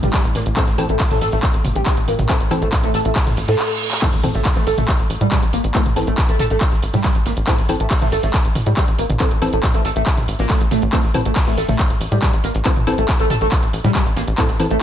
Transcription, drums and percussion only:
0.03 snare, closed hi-hat, mid tom
0.13 kick, snare, clap, closed hi-hat, shaker
0.24 closed hi-hat
0.35 snare, open hi-hat, shaker
0.46 closed hi-hat
0.56 kick, clap, closed hi-hat, mid tom, shaker
0.68 snare, closed hi-hat
0.78 open hi-hat, shaker
0.89 closed hi-hat
0.99 kick, snare, clap, closed hi-hat, open hi-hat
1.11 closed hi-hat, mid tom
1.21 open hi-hat, shaker
1.32 closed hi-hat
1.43 kick, clap, closed hi-hat, shaker
1.54 closed hi-hat
1.65 mid tom, open hi-hat, shaker
1.76 closed hi-hat
1.86 kick, snare, clap, closed hi-hat, shaker
1.97 closed hi-hat
2.08 open hi-hat, shaker
2.19 closed hi-hat, mid tom
2.29 kick, clap, closed hi-hat, shaker
2.40 closed hi-hat
2.51 snare, open hi-hat, shaker
2.62 closed hi-hat
2.72 kick, snare, clap, closed hi-hat, mid tom, shaker
2.84 closed hi-hat
2.94 snare, open hi-hat, shaker
3.05 closed hi-hat
3.15 kick, snare, clap, closed hi-hat, open hi-hat
3.27 closed hi-hat, mid tom
3.37 open hi-hat, shaker
3.48 snare, closed hi-hat, open hi-hat
3.59 clap
3.91 clap
4.02 kick, clap, closed hi-hat, crash
4.13 snare, closed hi-hat
4.24 mid tom, open hi-hat, shaker
4.35 closed hi-hat
4.45 kick, snare, clap, closed hi-hat, open hi-hat
4.56 closed hi-hat
4.67 open hi-hat, shaker
4.78 closed hi-hat, mid tom
4.88 kick, clap, closed hi-hat, shaker
4.99 closed hi-hat
5.10 open hi-hat, shaker
5.21 closed hi-hat
5.31 kick, snare, clap, closed hi-hat, mid tom, shaker
5.43 closed hi-hat
5.53 open hi-hat
5.64 closed hi-hat
5.74 kick, clap, closed hi-hat, shaker
5.86 closed hi-hat, mid tom
5.96 snare, open hi-hat
6.07 closed hi-hat
6.18 kick, snare, clap, closed hi-hat, shaker
6.29 closed hi-hat
6.39 snare, mid tom, open hi-hat, shaker
6.50 closed hi-hat
6.61 kick, clap, closed hi-hat, shaker
6.72 snare, closed hi-hat
6.83 open hi-hat, shaker
6.94 snare, closed hi-hat, mid tom
7.04 kick, snare, clap, closed hi-hat, shaker
7.15 closed hi-hat
7.26 snare, open hi-hat, shaker
7.37 closed hi-hat
7.47 kick, clap, closed hi-hat, mid tom, shaker
7.58 snare, closed hi-hat
7.69 open hi-hat
7.80 closed hi-hat
7.90 kick, snare, clap, closed hi-hat, open hi-hat
8.02 closed hi-hat, mid tom
8.12 open hi-hat, shaker
8.23 closed hi-hat
8.33 kick, clap, closed hi-hat, shaker
8.45 closed hi-hat
8.55 mid tom, open hi-hat
8.66 closed hi-hat
8.77 kick, snare, clap, closed hi-hat, shaker
8.88 closed hi-hat
8.98 open hi-hat, shaker
9.10 closed hi-hat, mid tom
9.20 kick, clap, closed hi-hat, shaker
9.31 closed hi-hat
9.42 snare, open hi-hat
9.53 closed hi-hat
9.63 kick, snare, clap, closed hi-hat, mid tom, shaker
9.74 closed hi-hat
9.85 snare, open hi-hat, shaker
9.96 closed hi-hat
10.06 kick, clap, closed hi-hat, shaker
10.17 snare, closed hi-hat, mid tom
10.28 open hi-hat
10.39 snare, closed hi-hat
10.50 kick, snare, clap, closed hi-hat, shaker
10.61 closed hi-hat
10.71 snare, mid tom, open hi-hat, shaker
10.82 closed hi-hat
10.93 kick, clap, closed hi-hat, shaker
11.03 snare, closed hi-hat
11.14 mid tom, open hi-hat, shaker
11.25 closed hi-hat
11.36 kick, snare, clap, closed hi-hat, open hi-hat
11.47 closed hi-hat
11.58 open hi-hat, shaker
11.69 closed hi-hat, mid tom
11.79 kick, clap, closed hi-hat, shaker
11.90 closed hi-hat
12.01 open hi-hat
12.12 closed hi-hat
12.22 kick, snare, clap, closed hi-hat, mid tom, shaker
12.33 closed hi-hat
12.44 open hi-hat, shaker
12.54 closed hi-hat
12.65 kick, clap, closed hi-hat, shaker
12.76 closed hi-hat, mid tom
12.87 snare, open hi-hat, shaker
12.98 closed hi-hat
13.08 kick, snare, clap, closed hi-hat, shaker
13.20 closed hi-hat
13.30 snare, mid tom, open hi-hat, shaker
13.41 closed hi-hat
13.52 kick, clap, closed hi-hat, shaker
13.62 snare, closed hi-hat
13.73 open hi-hat, shaker
13.84 snare, closed hi-hat, mid tom
13.95 kick, snare, clap, closed hi-hat
14.06 closed hi-hat
14.16 snare, open hi-hat, shaker
14.27 closed hi-hat
14.38 kick, clap, closed hi-hat, mid tom, shaker
14.49 snare, closed hi-hat
14.60 open hi-hat, shaker
14.71 closed hi-hat

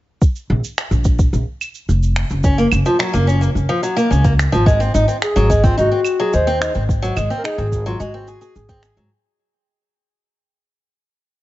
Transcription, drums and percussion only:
0.22 kick, cabasa
0.36 cabasa
0.64 cabasa
0.78 finger snap, cabasa
0.92 cabasa
1.04 kick, cabasa
1.19 kick, cabasa
1.33 cabasa
1.61 cabasa, claves
1.75 cabasa
1.89 cabasa
2.03 cabasa
2.16 finger snap, cabasa
2.30 cabasa
2.44 kick, cabasa
2.58 cabasa
2.72 cabasa, claves
2.86 cabasa
3.00 finger snap, cabasa
3.14 cabasa
3.29 cabasa
3.42 cabasa
3.57 cabasa
3.83 cabasa
3.98 cabasa
4.12 cabasa
4.25 kick, cabasa
4.39 finger snap, cabasa
4.53 cabasa
4.66 kick, cabasa
4.82 cabasa
4.95 cabasa
5.09 cabasa
5.22 finger snap, cabasa
5.37 cabasa
5.50 kick, cabasa
5.64 kick, cabasa
5.78 cabasa
6.05 cabasa, claves
6.33 cabasa
6.48 cabasa
6.62 finger snap, cabasa
6.74 cabasa
6.89 kick, cabasa
7.04 cabasa
7.17 cabasa, claves
7.31 cabasa
7.45 finger snap, cabasa
7.59 cabasa
7.72 kick, cabasa
7.87 cabasa
8.00 cabasa
8.28 cabasa
8.41 cabasa
8.56 cabasa
8.69 kick, cabasa
8.83 finger snap, cabasa
8.97 cabasa

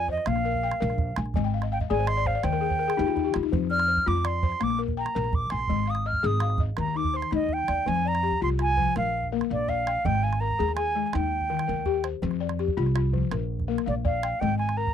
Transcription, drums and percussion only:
0.08 calabash thump
0.17 calabash click
0.26 calabash click
0.36 calabash click
0.54 calabash thump
0.71 calabash click
0.90 calabash click
0.98 calabash thump
1.16 calabash click
1.26 calabash click
1.34 calabash thump
1.62 calabash click
1.81 calabash thump
2.07 calabash click
2.25 calabash thump
2.43 calabash click
2.53 calabash click
2.71 calabash thump
2.90 calabash click
3.08 calabash click
3.17 calabash thump
3.34 calabash click
3.43 calabash click
3.53 calabash thump
3.79 calabash click
3.97 calabash thump
4.25 calabash click
4.43 calabash thump
4.52 calabash click
4.61 calabash click
4.70 calabash click
4.88 calabash thump
5.06 calabash click
5.24 calabash click
5.33 calabash thump
5.50 calabash click
5.59 calabash click
5.68 calabash thump
5.86 calabash click
5.95 calabash click
6.13 calabash thump
6.40 calabash click
6.50 calabash click
6.58 calabash thump
6.77 calabash click
6.86 calabash click
6.95 calabash click
7.05 calabash thump
7.14 calabash click
7.22 calabash click
7.31 calabash click
7.49 calabash thump
7.58 calabash click
7.68 calabash click
7.86 calabash thump
7.96 calabash click
8.15 calabash click
8.24 calabash click
8.32 calabash thump
8.50 calabash click
8.59 calabash click
8.77 calabash thump
8.96 calabash click
9.23 calabash thump
9.41 calabash click
9.68 calabash thump
9.87 calabash click
10.05 calabash thump
10.15 calabash click
10.33 calabash click
10.42 calabash click
10.50 calabash thump
10.69 calabash click
10.77 calabash click
11.13 calabash click
11.41 calabash thump
11.59 calabash click
11.86 calabash thump
12.04 calabash click
12.22 calabash thump
12.31 calabash click
12.49 calabash click
12.59 calabash click
12.68 calabash thump
12.86 calabash click
12.96 calabash click
13.14 calabash thump
13.31 calabash click
13.60 calabash thump
13.78 calabash click
14.05 calabash thump
14.23 calabash click
14.42 calabash thump
14.60 calabash click
14.69 calabash click
14.87 calabash thump

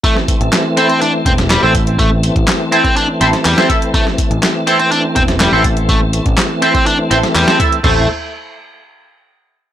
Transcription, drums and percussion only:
0.04 kick, closed hi-hat
0.17 snare
0.28 kick, closed hi-hat
0.41 closed hi-hat
0.53 snare, clap, closed hi-hat
0.77 closed hi-hat
0.89 closed hi-hat
1.01 closed hi-hat
1.26 kick, closed hi-hat
1.38 snare, closed hi-hat
1.50 snare, clap, closed hi-hat
1.75 kick, closed hi-hat
1.87 closed hi-hat
1.99 kick, closed hi-hat
2.23 closed hi-hat
2.36 kick, closed hi-hat
2.48 snare, clap, closed hi-hat
2.72 closed hi-hat
2.85 kick, closed hi-hat
2.96 closed hi-hat
3.21 closed hi-hat
3.33 snare, closed hi-hat
3.45 clap, closed hi-hat, open hi-hat
3.58 snare
3.70 kick, closed hi-hat
3.82 closed hi-hat
3.94 kick, closed hi-hat
4.07 snare
4.18 kick, closed hi-hat
4.31 closed hi-hat
4.43 snare, clap, closed hi-hat
4.67 closed hi-hat
4.80 closed hi-hat
4.92 closed hi-hat
5.16 kick, closed hi-hat
5.28 snare, closed hi-hat
5.40 snare, clap, closed hi-hat
5.64 kick, closed hi-hat
5.77 closed hi-hat
5.89 kick, closed hi-hat
6.13 closed hi-hat
6.26 kick, closed hi-hat
6.38 snare, clap, closed hi-hat
6.62 closed hi-hat
6.75 kick, closed hi-hat
6.86 closed hi-hat
7.11 closed hi-hat
7.23 snare, closed hi-hat
7.35 clap, closed hi-hat, open hi-hat
7.48 snare
7.60 kick, closed hi-hat
7.72 closed hi-hat
7.84 kick, floor tom, crash

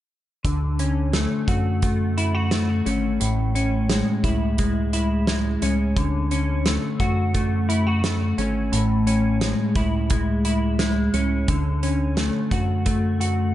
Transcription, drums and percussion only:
0.45 kick, closed hi-hat
0.79 closed hi-hat
1.13 snare, closed hi-hat
1.48 kick, closed hi-hat
1.82 kick, closed hi-hat
2.18 closed hi-hat
2.51 snare, closed hi-hat
2.86 closed hi-hat
3.21 closed hi-hat
3.56 closed hi-hat
3.89 snare, closed hi-hat
4.24 kick, closed hi-hat
4.58 kick, closed hi-hat
4.93 closed hi-hat
5.27 snare, closed hi-hat
5.62 closed hi-hat
5.97 kick, closed hi-hat
6.31 closed hi-hat
6.66 snare, closed hi-hat
7.00 kick, closed hi-hat
7.35 kick, closed hi-hat
7.70 closed hi-hat
8.04 snare, closed hi-hat
8.38 closed hi-hat
8.73 closed hi-hat
9.07 closed hi-hat
9.41 snare, closed hi-hat
9.75 kick, closed hi-hat
10.10 kick, closed hi-hat
10.45 closed hi-hat
10.79 snare, closed hi-hat
11.14 closed hi-hat
11.48 kick, closed hi-hat
11.83 closed hi-hat
12.17 snare, closed hi-hat
12.51 kick, closed hi-hat
12.86 kick, closed hi-hat
13.21 closed hi-hat

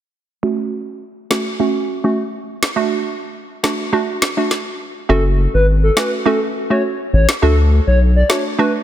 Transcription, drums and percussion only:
1.31 snare
2.63 snare
3.64 snare
4.22 snare
4.51 snare
5.97 snare
7.29 snare
8.30 snare

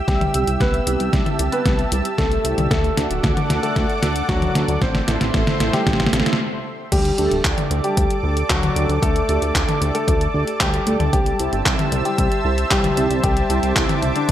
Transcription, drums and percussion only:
0.08 kick, snare, closed hi-hat
0.21 closed hi-hat, high tom
0.34 closed hi-hat
0.47 closed hi-hat
0.60 kick, snare, closed hi-hat
0.74 closed hi-hat
0.87 closed hi-hat
1.00 closed hi-hat
1.13 kick, snare, closed hi-hat
1.26 closed hi-hat, high tom
1.39 closed hi-hat
1.52 closed hi-hat
1.66 kick, snare, closed hi-hat
1.79 closed hi-hat
1.92 closed hi-hat
2.05 closed hi-hat
2.18 kick, snare, closed hi-hat
2.32 closed hi-hat
2.45 closed hi-hat
2.58 closed hi-hat, high tom
2.71 kick, snare, closed hi-hat
2.84 closed hi-hat
2.97 snare, closed hi-hat
3.11 closed hi-hat
3.23 kick, snare, closed hi-hat
3.37 closed hi-hat, high tom
3.50 snare, closed hi-hat
3.63 closed hi-hat
3.76 kick, snare, closed hi-hat
3.90 closed hi-hat
4.03 snare, closed hi-hat
4.16 closed hi-hat
4.29 kick, snare, closed hi-hat
4.42 closed hi-hat, high tom
4.55 snare, closed hi-hat
4.68 closed hi-hat
4.81 kick, snare, closed hi-hat
4.95 snare, closed hi-hat
5.08 snare, closed hi-hat
5.21 snare, closed hi-hat
5.34 kick, snare, closed hi-hat
5.47 snare, closed hi-hat, high tom
5.60 snare, closed hi-hat
5.73 snare, closed hi-hat
5.87 kick, snare, closed hi-hat
5.93 snare
6.00 snare, closed hi-hat
6.07 snare
6.13 snare, closed hi-hat
6.20 snare
6.26 snare, closed hi-hat
6.33 snare
6.92 kick, closed hi-hat, crash
7.05 closed hi-hat
7.18 closed hi-hat
7.31 closed hi-hat
7.45 kick, clap, closed hi-hat
7.58 closed hi-hat, high tom
7.71 closed hi-hat
7.84 closed hi-hat
7.97 kick, closed hi-hat
8.10 closed hi-hat
8.37 closed hi-hat
8.50 kick, clap, closed hi-hat
8.63 closed hi-hat, high tom
8.76 closed hi-hat
8.90 closed hi-hat
9.02 kick, closed hi-hat
9.16 closed hi-hat
9.29 closed hi-hat
9.42 closed hi-hat
9.55 kick, clap, closed hi-hat
9.69 closed hi-hat, high tom
9.82 closed hi-hat
9.95 closed hi-hat
10.08 kick, closed hi-hat
10.21 closed hi-hat
10.47 closed hi-hat
10.60 kick, clap, closed hi-hat
10.74 closed hi-hat
10.87 closed hi-hat
11.00 closed hi-hat, high tom
11.13 kick, closed hi-hat
11.26 closed hi-hat
11.39 closed hi-hat
11.53 closed hi-hat
11.66 kick, clap, closed hi-hat
11.79 closed hi-hat, high tom
11.92 closed hi-hat
12.05 closed hi-hat
12.18 kick, closed hi-hat
12.32 closed hi-hat
12.58 closed hi-hat
12.71 kick, clap, closed hi-hat
12.84 closed hi-hat, high tom
12.97 closed hi-hat
13.11 closed hi-hat
13.24 kick, closed hi-hat
13.37 closed hi-hat
13.50 closed hi-hat
13.63 closed hi-hat
13.76 kick, clap, closed hi-hat
13.89 closed hi-hat, high tom
14.02 closed hi-hat
14.16 closed hi-hat
14.29 kick, closed hi-hat

